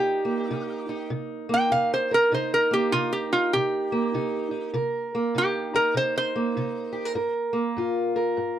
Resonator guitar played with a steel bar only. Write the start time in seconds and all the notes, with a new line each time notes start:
Already playing: G4
1.54 G5
1.72 F5
1.94 C5
2.14 A#4
2.34 C5
2.54 A#4
2.74 G4
2.92 F4
3.13 G4
3.33 F4
3.53 G4
5.38 G4
5.76 A#4
5.97 C5
6.18 C5